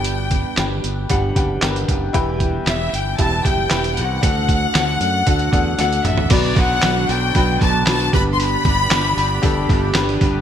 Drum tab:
CC |----------------|----------------|----------------|x---------------|
HH |x-x-x-x-x-x-xxx-|x-x-x-x-x-x-xxx-|x-x-x-x-xxx-xxx-|o-o-o-o-o-o-ooo-|
CP |----x-------x---|----x-------x---|----x-----------|----x-------x---|
SD |----o-------o---|----o-------o---|----o-------o---|----o-------o---|
T2 |----------------|----------------|--------------o-|----------------|
FT |----------------|----------------|---------------o|----------------|
BD |--o-----o-o---o-|o-o-----o-o-----|o-o-----o-o-----|o-o-----o-o---o-|

CC |----------------|
HH |o-o-o-o-o-o-ooo-|
CP |----x-------x---|
SD |----o-------o---|
T2 |----------------|
FT |----------------|
BD |--o-----o-o---o-|